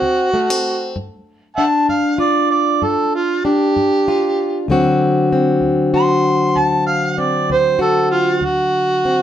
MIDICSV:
0, 0, Header, 1, 3, 480
1, 0, Start_track
1, 0, Tempo, 622407
1, 736, Time_signature, 12, 3, 24, 8
1, 7112, End_track
2, 0, Start_track
2, 0, Title_t, "Harmonica"
2, 0, Program_c, 0, 22
2, 0, Note_on_c, 0, 66, 86
2, 715, Note_off_c, 0, 66, 0
2, 1208, Note_on_c, 0, 76, 60
2, 1208, Note_on_c, 0, 78, 60
2, 1208, Note_on_c, 0, 81, 86
2, 1268, Note_off_c, 0, 76, 0
2, 1272, Note_off_c, 0, 78, 0
2, 1445, Note_off_c, 0, 81, 0
2, 1459, Note_on_c, 0, 77, 79
2, 1691, Note_off_c, 0, 77, 0
2, 1695, Note_on_c, 0, 74, 88
2, 1925, Note_off_c, 0, 74, 0
2, 1930, Note_on_c, 0, 74, 76
2, 2184, Note_on_c, 0, 69, 72
2, 2195, Note_off_c, 0, 74, 0
2, 2414, Note_off_c, 0, 69, 0
2, 2430, Note_on_c, 0, 65, 80
2, 2652, Note_off_c, 0, 65, 0
2, 2657, Note_on_c, 0, 67, 95
2, 3589, Note_off_c, 0, 67, 0
2, 4596, Note_on_c, 0, 84, 111
2, 5073, Note_on_c, 0, 81, 88
2, 5085, Note_off_c, 0, 84, 0
2, 5289, Note_off_c, 0, 81, 0
2, 5294, Note_on_c, 0, 77, 89
2, 5544, Note_on_c, 0, 74, 76
2, 5555, Note_off_c, 0, 77, 0
2, 5774, Note_off_c, 0, 74, 0
2, 5794, Note_on_c, 0, 72, 99
2, 6019, Note_off_c, 0, 72, 0
2, 6025, Note_on_c, 0, 69, 91
2, 6250, Note_off_c, 0, 69, 0
2, 6254, Note_on_c, 0, 65, 90
2, 6513, Note_on_c, 0, 66, 93
2, 6525, Note_off_c, 0, 65, 0
2, 7112, Note_off_c, 0, 66, 0
2, 7112, End_track
3, 0, Start_track
3, 0, Title_t, "Steel-string acoustic guitar"
3, 0, Program_c, 1, 25
3, 0, Note_on_c, 1, 60, 60
3, 15, Note_on_c, 1, 38, 75
3, 256, Note_off_c, 1, 60, 0
3, 259, Note_on_c, 1, 57, 60
3, 387, Note_off_c, 1, 57, 0
3, 387, Note_on_c, 1, 60, 49
3, 448, Note_off_c, 1, 38, 0
3, 739, Note_on_c, 1, 43, 74
3, 742, Note_off_c, 1, 60, 0
3, 1170, Note_off_c, 1, 43, 0
3, 1217, Note_on_c, 1, 62, 59
3, 1456, Note_on_c, 1, 43, 68
3, 1684, Note_on_c, 1, 65, 56
3, 1889, Note_off_c, 1, 43, 0
3, 2175, Note_on_c, 1, 43, 69
3, 2609, Note_off_c, 1, 43, 0
3, 2656, Note_off_c, 1, 62, 0
3, 2659, Note_on_c, 1, 62, 59
3, 2903, Note_on_c, 1, 43, 75
3, 3132, Note_off_c, 1, 65, 0
3, 3146, Note_on_c, 1, 65, 69
3, 3333, Note_off_c, 1, 43, 0
3, 3594, Note_off_c, 1, 65, 0
3, 3611, Note_on_c, 1, 38, 79
3, 3623, Note_on_c, 1, 50, 68
3, 3628, Note_on_c, 1, 54, 64
3, 3631, Note_off_c, 1, 62, 0
3, 3634, Note_on_c, 1, 60, 68
3, 3638, Note_on_c, 1, 66, 68
3, 4047, Note_off_c, 1, 38, 0
3, 4103, Note_off_c, 1, 60, 0
3, 4106, Note_on_c, 1, 60, 56
3, 4325, Note_on_c, 1, 38, 66
3, 4576, Note_off_c, 1, 66, 0
3, 4579, Note_on_c, 1, 66, 66
3, 4764, Note_off_c, 1, 38, 0
3, 5057, Note_on_c, 1, 38, 77
3, 5490, Note_off_c, 1, 38, 0
3, 5529, Note_off_c, 1, 60, 0
3, 5538, Note_on_c, 1, 60, 61
3, 5784, Note_on_c, 1, 38, 73
3, 5998, Note_off_c, 1, 66, 0
3, 6007, Note_on_c, 1, 66, 67
3, 6213, Note_off_c, 1, 38, 0
3, 6464, Note_off_c, 1, 66, 0
3, 6470, Note_off_c, 1, 60, 0
3, 6487, Note_on_c, 1, 38, 79
3, 6924, Note_off_c, 1, 38, 0
3, 6981, Note_on_c, 1, 60, 58
3, 7112, Note_off_c, 1, 50, 0
3, 7112, Note_off_c, 1, 54, 0
3, 7112, Note_off_c, 1, 60, 0
3, 7112, End_track
0, 0, End_of_file